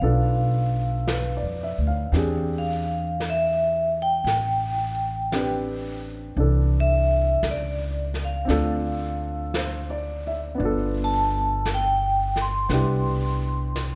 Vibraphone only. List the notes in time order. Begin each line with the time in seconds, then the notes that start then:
Already playing: F5
2.58 F5
3.30 E5
4.02 G5
6.80 E5
7.51 D5
8.25 F5
11.04 A5
11.74 G5
12.42 C6